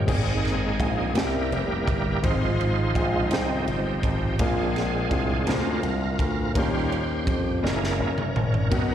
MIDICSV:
0, 0, Header, 1, 5, 480
1, 0, Start_track
1, 0, Key_signature, -4, "major"
1, 0, Tempo, 719424
1, 54, Time_signature, 6, 3, 24, 8
1, 5969, End_track
2, 0, Start_track
2, 0, Title_t, "Grand piano"
2, 0, Program_c, 0, 0
2, 0, Control_c, 0, 64, 127
2, 0, Note_on_c, 0, 70, 55
2, 0, Note_on_c, 0, 75, 61
2, 39, Note_on_c, 0, 56, 80
2, 43, Note_on_c, 0, 60, 70
2, 45, Note_on_c, 0, 44, 62
2, 45, Note_on_c, 0, 63, 70
2, 49, Note_on_c, 0, 67, 71
2, 51, Note_on_c, 0, 68, 86
2, 61, Control_c, 0, 64, 0
2, 160, Note_off_c, 0, 75, 0
2, 161, Note_off_c, 0, 70, 0
2, 169, Control_c, 0, 64, 127
2, 546, Note_off_c, 0, 56, 0
2, 548, Note_off_c, 0, 60, 0
2, 549, Note_off_c, 0, 63, 0
2, 551, Note_off_c, 0, 67, 0
2, 552, Note_off_c, 0, 68, 0
2, 743, Note_off_c, 0, 44, 0
2, 763, Note_on_c, 0, 58, 70
2, 765, Note_on_c, 0, 60, 67
2, 767, Note_on_c, 0, 48, 64
2, 769, Note_on_c, 0, 61, 47
2, 769, Note_on_c, 0, 67, 63
2, 772, Note_on_c, 0, 70, 72
2, 783, Control_c, 0, 64, 0
2, 810, Note_on_c, 0, 64, 59
2, 815, Note_off_c, 0, 61, 0
2, 908, Control_c, 0, 64, 127
2, 1268, Note_off_c, 0, 58, 0
2, 1269, Note_off_c, 0, 60, 0
2, 1271, Note_off_c, 0, 67, 0
2, 1272, Note_off_c, 0, 70, 0
2, 1291, Note_off_c, 0, 64, 0
2, 1465, Note_off_c, 0, 48, 0
2, 1483, Note_on_c, 0, 60, 78
2, 1485, Note_on_c, 0, 63, 77
2, 1486, Note_on_c, 0, 65, 73
2, 1489, Note_on_c, 0, 44, 67
2, 1491, Note_on_c, 0, 68, 70
2, 1493, Note_on_c, 0, 72, 89
2, 1504, Control_c, 0, 64, 0
2, 1602, Control_c, 0, 64, 127
2, 1988, Note_off_c, 0, 60, 0
2, 1989, Note_off_c, 0, 63, 0
2, 1989, Note_off_c, 0, 65, 0
2, 1992, Note_off_c, 0, 68, 0
2, 1993, Note_off_c, 0, 72, 0
2, 2185, Note_off_c, 0, 44, 0
2, 2208, Note_on_c, 0, 60, 68
2, 2209, Note_on_c, 0, 63, 61
2, 2215, Note_on_c, 0, 65, 64
2, 2216, Note_on_c, 0, 68, 66
2, 2220, Note_on_c, 0, 72, 75
2, 2710, Note_off_c, 0, 60, 0
2, 2710, Note_off_c, 0, 63, 0
2, 2714, Note_off_c, 0, 65, 0
2, 2714, Note_off_c, 0, 68, 0
2, 2716, Note_off_c, 0, 72, 0
2, 2930, Note_on_c, 0, 58, 80
2, 2931, Note_on_c, 0, 62, 75
2, 2933, Note_on_c, 0, 65, 78
2, 2935, Note_on_c, 0, 68, 75
2, 2936, Note_on_c, 0, 46, 67
2, 2943, Control_c, 0, 64, 0
2, 2943, Note_on_c, 0, 70, 89
2, 3046, Control_c, 0, 64, 127
2, 3431, Note_off_c, 0, 58, 0
2, 3431, Note_off_c, 0, 62, 0
2, 3432, Note_off_c, 0, 65, 0
2, 3433, Note_off_c, 0, 68, 0
2, 3437, Note_off_c, 0, 70, 0
2, 3629, Note_off_c, 0, 46, 0
2, 3646, Note_on_c, 0, 58, 67
2, 3651, Note_on_c, 0, 62, 66
2, 3653, Note_on_c, 0, 65, 63
2, 3657, Note_on_c, 0, 68, 62
2, 3658, Note_on_c, 0, 72, 80
2, 4148, Note_off_c, 0, 58, 0
2, 4151, Note_off_c, 0, 62, 0
2, 4152, Note_off_c, 0, 65, 0
2, 4154, Note_off_c, 0, 68, 0
2, 4155, Note_off_c, 0, 72, 0
2, 4369, Note_on_c, 0, 58, 80
2, 4371, Note_on_c, 0, 61, 75
2, 4375, Note_on_c, 0, 51, 62
2, 4376, Note_on_c, 0, 63, 70
2, 4376, Note_on_c, 0, 67, 69
2, 4381, Note_on_c, 0, 70, 87
2, 4383, Control_c, 0, 64, 0
2, 4499, Control_c, 0, 64, 127
2, 4870, Note_off_c, 0, 58, 0
2, 4871, Note_off_c, 0, 61, 0
2, 4873, Note_off_c, 0, 63, 0
2, 4873, Note_off_c, 0, 67, 0
2, 4876, Note_off_c, 0, 70, 0
2, 5067, Note_off_c, 0, 51, 0
2, 5083, Note_on_c, 0, 58, 66
2, 5086, Note_on_c, 0, 61, 61
2, 5088, Note_on_c, 0, 64, 62
2, 5090, Note_on_c, 0, 66, 57
2, 5095, Note_on_c, 0, 70, 77
2, 5102, Control_c, 0, 64, 0
2, 5226, Control_c, 0, 64, 127
2, 5587, Note_off_c, 0, 58, 0
2, 5588, Note_off_c, 0, 61, 0
2, 5589, Note_off_c, 0, 64, 0
2, 5590, Note_off_c, 0, 66, 0
2, 5593, Note_off_c, 0, 70, 0
2, 5807, Note_on_c, 0, 58, 80
2, 5807, Note_on_c, 0, 59, 72
2, 5812, Note_on_c, 0, 63, 74
2, 5814, Note_on_c, 0, 47, 61
2, 5814, Note_on_c, 0, 66, 69
2, 5817, Note_on_c, 0, 70, 90
2, 5821, Control_c, 0, 64, 0
2, 5937, Control_c, 0, 64, 127
2, 5969, Note_off_c, 0, 47, 0
2, 5969, Note_off_c, 0, 58, 0
2, 5969, Note_off_c, 0, 59, 0
2, 5969, Note_off_c, 0, 63, 0
2, 5969, Note_off_c, 0, 66, 0
2, 5969, Note_off_c, 0, 70, 0
2, 5969, End_track
3, 0, Start_track
3, 0, Title_t, "Tonewheel organ"
3, 0, Program_c, 1, 16
3, 0, Note_on_c, 1, 67, 74
3, 48, Note_on_c, 1, 56, 56
3, 49, Note_on_c, 1, 58, 52
3, 51, Note_on_c, 1, 63, 63
3, 56, Note_on_c, 1, 60, 62
3, 65, Note_on_c, 1, 68, 81
3, 80, Note_off_c, 1, 67, 0
3, 745, Note_off_c, 1, 56, 0
3, 745, Note_off_c, 1, 58, 0
3, 747, Note_off_c, 1, 63, 0
3, 749, Note_off_c, 1, 60, 0
3, 771, Note_on_c, 1, 55, 56
3, 775, Note_on_c, 1, 58, 51
3, 779, Note_on_c, 1, 67, 60
3, 780, Note_on_c, 1, 64, 61
3, 790, Note_on_c, 1, 70, 89
3, 802, Note_off_c, 1, 68, 0
3, 1466, Note_off_c, 1, 55, 0
3, 1469, Note_off_c, 1, 58, 0
3, 1470, Note_off_c, 1, 67, 0
3, 1473, Note_off_c, 1, 64, 0
3, 1490, Note_on_c, 1, 56, 54
3, 1495, Note_on_c, 1, 53, 59
3, 1499, Note_on_c, 1, 65, 68
3, 1500, Note_on_c, 1, 63, 68
3, 1504, Note_on_c, 1, 72, 102
3, 1524, Note_off_c, 1, 70, 0
3, 2190, Note_off_c, 1, 65, 0
3, 2206, Note_off_c, 1, 56, 0
3, 2212, Note_off_c, 1, 63, 0
3, 2214, Note_on_c, 1, 56, 46
3, 2215, Note_on_c, 1, 51, 52
3, 2220, Note_on_c, 1, 63, 56
3, 2225, Note_on_c, 1, 60, 61
3, 2225, Note_on_c, 1, 67, 84
3, 2241, Note_off_c, 1, 72, 0
3, 2430, Note_off_c, 1, 56, 0
3, 2431, Note_off_c, 1, 51, 0
3, 2908, Note_off_c, 1, 53, 0
3, 2912, Note_off_c, 1, 63, 0
3, 2913, Note_off_c, 1, 60, 0
3, 2930, Note_on_c, 1, 56, 62
3, 2940, Note_on_c, 1, 60, 52
3, 2940, Note_on_c, 1, 62, 64
3, 2944, Note_on_c, 1, 65, 73
3, 2945, Note_on_c, 1, 68, 94
3, 2961, Note_off_c, 1, 67, 0
3, 3632, Note_off_c, 1, 65, 0
3, 3648, Note_off_c, 1, 60, 0
3, 3649, Note_off_c, 1, 56, 0
3, 3649, Note_off_c, 1, 62, 0
3, 3656, Note_on_c, 1, 60, 45
3, 3657, Note_on_c, 1, 56, 49
3, 3657, Note_on_c, 1, 62, 69
3, 3659, Note_on_c, 1, 65, 67
3, 3663, Note_on_c, 1, 70, 95
3, 3681, Note_off_c, 1, 68, 0
3, 3871, Note_off_c, 1, 56, 0
3, 3871, Note_off_c, 1, 60, 0
3, 3873, Note_off_c, 1, 62, 0
3, 4349, Note_off_c, 1, 65, 0
3, 4352, Note_off_c, 1, 70, 0
3, 4369, Note_on_c, 1, 55, 58
3, 4374, Note_on_c, 1, 61, 51
3, 4377, Note_on_c, 1, 65, 67
3, 4378, Note_on_c, 1, 67, 70
3, 4378, Note_on_c, 1, 72, 97
3, 4690, Note_off_c, 1, 55, 0
3, 4693, Note_off_c, 1, 61, 0
3, 4694, Note_off_c, 1, 65, 0
3, 4829, Note_off_c, 1, 72, 0
3, 4849, Note_on_c, 1, 72, 90
3, 4958, Note_off_c, 1, 72, 0
3, 5069, Note_off_c, 1, 67, 0
3, 5090, Note_on_c, 1, 56, 55
3, 5095, Note_on_c, 1, 70, 86
3, 5096, Note_on_c, 1, 58, 49
3, 5102, Note_on_c, 1, 61, 63
3, 5103, Note_on_c, 1, 64, 65
3, 5411, Note_off_c, 1, 56, 0
3, 5414, Note_off_c, 1, 58, 0
3, 5418, Note_off_c, 1, 64, 0
3, 5791, Note_off_c, 1, 61, 0
3, 5796, Note_off_c, 1, 70, 0
3, 5799, Note_on_c, 1, 51, 57
3, 5804, Note_on_c, 1, 70, 52
3, 5806, Note_on_c, 1, 71, 100
3, 5808, Note_on_c, 1, 61, 60
3, 5808, Note_on_c, 1, 66, 69
3, 5809, Note_on_c, 1, 63, 73
3, 5969, Note_off_c, 1, 51, 0
3, 5969, Note_off_c, 1, 61, 0
3, 5969, Note_off_c, 1, 63, 0
3, 5969, Note_off_c, 1, 66, 0
3, 5969, Note_off_c, 1, 70, 0
3, 5969, Note_off_c, 1, 71, 0
3, 5969, End_track
4, 0, Start_track
4, 0, Title_t, "Slap bass"
4, 0, Program_c, 2, 36
4, 54, Note_on_c, 2, 32, 105
4, 508, Note_off_c, 2, 32, 0
4, 530, Note_on_c, 2, 34, 96
4, 753, Note_off_c, 2, 34, 0
4, 772, Note_on_c, 2, 36, 99
4, 1013, Note_on_c, 2, 29, 93
4, 1023, Note_off_c, 2, 36, 0
4, 1234, Note_off_c, 2, 29, 0
4, 1252, Note_on_c, 2, 31, 91
4, 1474, Note_off_c, 2, 31, 0
4, 1493, Note_on_c, 2, 32, 116
4, 1947, Note_off_c, 2, 32, 0
4, 1970, Note_on_c, 2, 34, 88
4, 2193, Note_off_c, 2, 34, 0
4, 2211, Note_on_c, 2, 36, 98
4, 2433, Note_off_c, 2, 36, 0
4, 2451, Note_on_c, 2, 31, 84
4, 2673, Note_off_c, 2, 31, 0
4, 2692, Note_on_c, 2, 32, 101
4, 2914, Note_off_c, 2, 32, 0
4, 2930, Note_on_c, 2, 34, 112
4, 3386, Note_off_c, 2, 34, 0
4, 3408, Note_on_c, 2, 36, 99
4, 3632, Note_off_c, 2, 36, 0
4, 3648, Note_on_c, 2, 38, 99
4, 3872, Note_off_c, 2, 38, 0
4, 3887, Note_on_c, 2, 36, 85
4, 4111, Note_off_c, 2, 36, 0
4, 4129, Note_on_c, 2, 38, 88
4, 4352, Note_off_c, 2, 38, 0
4, 4373, Note_on_c, 2, 39, 98
4, 4826, Note_off_c, 2, 39, 0
4, 4850, Note_on_c, 2, 41, 99
4, 5072, Note_off_c, 2, 41, 0
4, 5095, Note_on_c, 2, 30, 108
4, 5315, Note_off_c, 2, 30, 0
4, 5335, Note_on_c, 2, 30, 90
4, 5555, Note_off_c, 2, 30, 0
4, 5574, Note_on_c, 2, 32, 93
4, 5795, Note_off_c, 2, 32, 0
4, 5817, Note_on_c, 2, 35, 97
4, 5969, Note_off_c, 2, 35, 0
4, 5969, End_track
5, 0, Start_track
5, 0, Title_t, "Drums"
5, 53, Note_on_c, 9, 36, 96
5, 55, Note_on_c, 9, 49, 102
5, 120, Note_off_c, 9, 36, 0
5, 122, Note_off_c, 9, 49, 0
5, 300, Note_on_c, 9, 51, 34
5, 305, Note_on_c, 9, 38, 30
5, 367, Note_off_c, 9, 51, 0
5, 372, Note_off_c, 9, 38, 0
5, 531, Note_on_c, 9, 36, 94
5, 535, Note_on_c, 9, 51, 54
5, 598, Note_off_c, 9, 36, 0
5, 602, Note_off_c, 9, 51, 0
5, 769, Note_on_c, 9, 51, 67
5, 785, Note_on_c, 9, 38, 106
5, 835, Note_off_c, 9, 51, 0
5, 852, Note_off_c, 9, 38, 0
5, 1016, Note_on_c, 9, 51, 41
5, 1083, Note_off_c, 9, 51, 0
5, 1251, Note_on_c, 9, 36, 92
5, 1256, Note_on_c, 9, 51, 44
5, 1318, Note_off_c, 9, 36, 0
5, 1323, Note_off_c, 9, 51, 0
5, 1492, Note_on_c, 9, 51, 79
5, 1493, Note_on_c, 9, 36, 104
5, 1559, Note_off_c, 9, 36, 0
5, 1559, Note_off_c, 9, 51, 0
5, 1739, Note_on_c, 9, 51, 35
5, 1806, Note_off_c, 9, 51, 0
5, 1971, Note_on_c, 9, 36, 97
5, 1973, Note_on_c, 9, 51, 53
5, 2037, Note_off_c, 9, 36, 0
5, 2040, Note_off_c, 9, 51, 0
5, 2207, Note_on_c, 9, 51, 67
5, 2223, Note_on_c, 9, 38, 107
5, 2274, Note_off_c, 9, 51, 0
5, 2290, Note_off_c, 9, 38, 0
5, 2453, Note_on_c, 9, 51, 42
5, 2519, Note_off_c, 9, 51, 0
5, 2691, Note_on_c, 9, 36, 89
5, 2695, Note_on_c, 9, 51, 47
5, 2757, Note_off_c, 9, 36, 0
5, 2762, Note_off_c, 9, 51, 0
5, 2930, Note_on_c, 9, 51, 84
5, 2932, Note_on_c, 9, 36, 112
5, 2997, Note_off_c, 9, 51, 0
5, 2999, Note_off_c, 9, 36, 0
5, 3177, Note_on_c, 9, 51, 35
5, 3182, Note_on_c, 9, 38, 30
5, 3244, Note_off_c, 9, 51, 0
5, 3249, Note_off_c, 9, 38, 0
5, 3409, Note_on_c, 9, 36, 98
5, 3410, Note_on_c, 9, 51, 52
5, 3476, Note_off_c, 9, 36, 0
5, 3477, Note_off_c, 9, 51, 0
5, 3649, Note_on_c, 9, 51, 66
5, 3665, Note_on_c, 9, 38, 112
5, 3716, Note_off_c, 9, 51, 0
5, 3732, Note_off_c, 9, 38, 0
5, 3891, Note_on_c, 9, 51, 42
5, 3958, Note_off_c, 9, 51, 0
5, 4131, Note_on_c, 9, 36, 96
5, 4136, Note_on_c, 9, 51, 44
5, 4198, Note_off_c, 9, 36, 0
5, 4203, Note_off_c, 9, 51, 0
5, 4372, Note_on_c, 9, 51, 85
5, 4373, Note_on_c, 9, 36, 109
5, 4439, Note_off_c, 9, 36, 0
5, 4439, Note_off_c, 9, 51, 0
5, 4619, Note_on_c, 9, 51, 36
5, 4685, Note_off_c, 9, 51, 0
5, 4851, Note_on_c, 9, 36, 91
5, 4853, Note_on_c, 9, 51, 51
5, 4918, Note_off_c, 9, 36, 0
5, 4920, Note_off_c, 9, 51, 0
5, 5107, Note_on_c, 9, 38, 58
5, 5174, Note_off_c, 9, 38, 0
5, 5229, Note_on_c, 9, 38, 62
5, 5295, Note_off_c, 9, 38, 0
5, 5456, Note_on_c, 9, 47, 77
5, 5523, Note_off_c, 9, 47, 0
5, 5578, Note_on_c, 9, 45, 99
5, 5644, Note_off_c, 9, 45, 0
5, 5698, Note_on_c, 9, 43, 92
5, 5765, Note_off_c, 9, 43, 0
5, 5815, Note_on_c, 9, 36, 107
5, 5815, Note_on_c, 9, 51, 83
5, 5881, Note_off_c, 9, 51, 0
5, 5882, Note_off_c, 9, 36, 0
5, 5969, End_track
0, 0, End_of_file